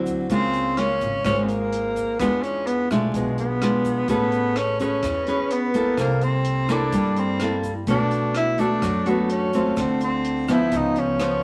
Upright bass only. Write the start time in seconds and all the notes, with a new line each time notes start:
Already playing: D2
0.30 C#2
1.01 G#1
1.25 G#1
2.20 E2
2.90 B1
3.15 B1
4.08 A1
5.03 E2
5.98 C2
6.93 G2
7.87 B1
8.82 F#2
9.77 D2
10.72 C#2